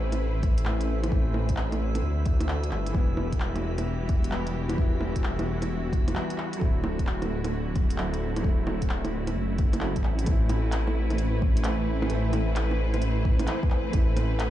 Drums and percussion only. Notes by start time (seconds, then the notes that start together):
0.12 closed hi-hat, low bongo
0.43 kick, closed hi-hat
0.58 closed hi-hat
0.65 clap
0.81 closed hi-hat
1.04 closed hi-hat, low bongo
1.12 kick
1.34 low bongo
1.49 kick, closed hi-hat
1.57 clap
1.72 closed hi-hat, low bongo
1.95 closed hi-hat, low bongo
2.26 kick, closed hi-hat
2.41 closed hi-hat, low bongo
2.49 clap
2.64 closed hi-hat
2.71 clap
2.87 closed hi-hat
2.95 kick
3.17 low bongo
3.33 kick, closed hi-hat
3.40 clap
3.56 closed hi-hat, low bongo
3.78 closed hi-hat, low bongo
4.09 kick, closed hi-hat
4.24 closed hi-hat
4.32 clap
4.47 closed hi-hat
4.70 closed hi-hat, low bongo
4.78 kick
5.01 low bongo
5.16 kick, closed hi-hat
5.24 clap
5.39 closed hi-hat, low bongo
5.62 closed hi-hat, low bongo
5.93 kick, closed hi-hat
6.08 closed hi-hat, low bongo
6.15 clap
6.30 closed hi-hat
6.38 clap
6.53 closed hi-hat
6.61 kick
6.84 low bongo
6.99 kick, closed hi-hat
7.07 clap
7.22 closed hi-hat, low bongo
7.44 closed hi-hat, low bongo
7.76 kick, closed hi-hat
7.90 closed hi-hat
7.98 clap
8.14 closed hi-hat
8.36 closed hi-hat, low bongo
8.44 kick
8.67 low bongo
8.82 kick, closed hi-hat
8.89 clap
9.05 closed hi-hat, low bongo
9.27 closed hi-hat, low bongo
9.58 kick, closed hi-hat
9.73 closed hi-hat, low bongo
9.81 clap
9.96 kick, closed hi-hat
10.04 clap
10.19 closed hi-hat
10.26 kick, closed hi-hat
10.49 closed hi-hat, low bongo
10.72 clap, closed hi-hat
10.87 low bongo
11.10 closed hi-hat, low bongo
11.18 closed hi-hat
11.42 kick
11.57 closed hi-hat
11.64 clap, closed hi-hat
12.02 low bongo
12.10 closed hi-hat
12.33 closed hi-hat, low bongo
12.56 clap, closed hi-hat
12.71 low bongo
12.94 closed hi-hat, low bongo
13.02 closed hi-hat
13.25 kick
13.39 closed hi-hat, low bongo
13.47 clap, closed hi-hat
13.63 kick
13.70 clap
13.93 kick, closed hi-hat
14.17 closed hi-hat, low bongo
14.40 clap, closed hi-hat